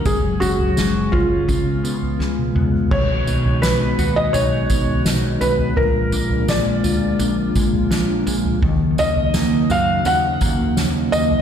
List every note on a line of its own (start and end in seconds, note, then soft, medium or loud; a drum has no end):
0.00 2.87 C#3 medium
0.00 1.44 F#3 medium
0.00 0.13 A#3 medium
0.00 0.13 C#4 soft
0.00 0.11 A#4 loud
0.05 0.37 F#1 loud
0.05 1.48 F#3 medium
0.05 1.47 G#3 medium
0.05 1.47 G#4 medium
0.05 0.42 G#4 medium
0.05 kick loud
0.05 floor tom loud
0.05 tambourine medium
0.40 0.73 F#1 medium
0.40 1.11 C#4 medium
0.40 1.14 F#4 medium
0.40 tambourine medium
0.59 floor tom medium
0.77 1.09 F#1 medium
0.77 2.19 G#3 medium
0.77 snare loud
0.77 tambourine medium
1.12 1.44 F#1 medium
1.12 1.55 C#4 medium
1.12 2.16 F4 medium
1.12 kick medium
1.12 floor tom medium
1.48 1.80 C#2 loud
1.48 2.98 C#3 medium
1.48 2.90 G#3 medium
1.48 2.90 B3 medium
1.48 2.90 F4 medium
1.48 kick medium
1.48 tambourine medium
1.84 2.16 C#3 medium
1.84 2.55 B3 medium
1.84 tambourine medium
2.02 floor tom medium
2.19 2.51 C#2 medium
2.19 4.02 G#3 medium
2.19 snare soft
2.38 high tom medium
2.55 2.87 C#2 medium
2.55 3.63 B3 medium
2.55 mid tom medium
2.74 floor tom medium
2.91 3.23 B1 loud
2.91 5.76 B2 medium
2.91 5.74 D#3 medium
2.91 8.59 G#3 medium
2.91 5.74 B3 medium
2.91 5.74 F#4 medium
2.91 3.65 C#5 medium
2.91 kick loud
2.91 floor tom loud
2.91 crash loud
3.27 3.58 B1 medium
3.27 4.33 D#4 medium
3.27 tambourine medium
3.46 floor tom medium
3.62 3.94 B1 medium
3.62 4.69 B3 medium
3.62 4.17 B4 medium
3.62 snare loud
3.62 tambourine medium
3.99 4.30 D#2 medium
3.99 4.16 F#4 medium
3.99 floor tom medium
3.99 tambourine medium
4.16 5.84 G#4 medium
4.16 4.35 D#5 medium
4.33 4.66 B1 loud
4.33 5.04 D#4 medium
4.33 5.01 C#5 medium
4.33 floor tom medium
4.33 tambourine medium
4.70 5.01 B1 loud
4.70 5.40 B3 medium
4.70 kick medium
4.70 tambourine medium
4.88 floor tom medium
5.05 5.37 B1 loud
5.05 5.84 D#4 medium
5.05 snare loud
5.05 tambourine loud
5.41 5.73 B1 loud
5.41 5.84 B3 medium
5.41 5.78 B4 medium
5.41 tambourine medium
5.59 floor tom medium
5.76 6.09 A#1 loud
5.76 8.62 A#2 medium
5.76 8.60 D3 medium
5.76 11.42 A#3 medium
5.76 8.59 F4 medium
5.76 6.50 A#4 medium
5.76 floor tom loud
6.12 6.44 A#1 medium
6.12 7.19 D4 medium
6.12 tambourine medium
6.30 floor tom medium
6.48 6.80 A#1 medium
6.48 7.55 G#3 medium
6.48 7.16 D5 medium
6.48 snare loud
6.48 tambourine medium
6.84 7.15 D2 medium
6.84 8.70 F4 medium
6.84 floor tom medium
6.84 tambourine medium
7.19 7.51 A#1 loud
7.19 7.90 D4 medium
7.19 tambourine medium
7.55 7.87 A#1 medium
7.55 8.26 G#3 medium
7.55 kick medium
7.55 tambourine medium
7.73 floor tom medium
7.91 8.22 A#1 loud
7.91 8.70 D4 medium
7.91 snare loud
7.91 tambourine medium
8.27 8.58 A#1 loud
8.27 8.70 G#3 medium
8.27 tambourine medium
8.45 floor tom medium
8.63 8.94 D#2 loud
8.63 11.42 C#3 medium
8.63 11.42 D#3 medium
8.63 11.42 F#3 medium
8.63 11.42 D#4 medium
8.63 kick loud
8.63 floor tom loud
8.98 9.30 D#2 medium
8.98 10.04 C#4 medium
8.98 9.72 D#5 loud
8.98 tambourine medium
9.16 floor tom medium
9.34 9.66 D#2 loud
9.34 10.40 A#3 medium
9.34 snare loud
9.34 tambourine medium
9.70 10.01 F#2 medium
9.70 11.42 F#4 medium
9.70 10.07 F5 loud
9.70 floor tom medium
9.70 tambourine medium
10.05 10.37 D#2 loud
10.05 10.76 C#4 medium
10.05 10.73 F#5 medium
10.05 tambourine medium
10.41 10.73 D#2 loud
10.41 11.12 A#3 medium
10.41 kick medium
10.41 tambourine medium
10.59 floor tom medium
10.77 11.09 D#2 medium
10.77 11.42 C#4 medium
10.77 snare loud
10.77 tambourine loud
11.12 11.42 D#2 medium
11.12 11.42 A#3 medium
11.12 11.42 D#5 loud
11.12 tambourine medium
11.31 floor tom medium